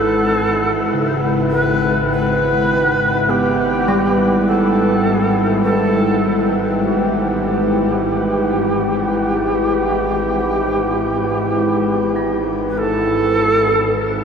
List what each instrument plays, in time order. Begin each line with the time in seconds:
Already playing: synth drone G#1 G#2, ambient pad E4 B4 F#5, shakuhachi A4
0.10 ambient pad G5
0.93 bronze metallophone C#3
1.51 shakuhachi B4
2.11 shakuhachi B4
3.29 bronze metallophone B3, shakuhachi G4
3.88 bronze metallophone G3
4.47 shakuhachi A4
5.63 shakuhachi A4
6.83 shakuhachi G4
12.16 bronze metallophone E4
12.69 shakuhachi B4
12.78 shakuhachi A4
13.99 shakuhachi A#4
14.11 shakuhachi B4